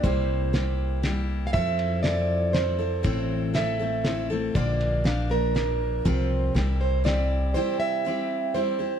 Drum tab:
RD |x-x-x-|xxx-x-|x-x-x-|xxx-x-|
SD |--o-o-|--o-o-|--o-o-|--o-o-|
BD |o-----|o-----|o-----|o-----|

RD |x-x-x-|------|
SD |--o-o-|------|
BD |o-----|------|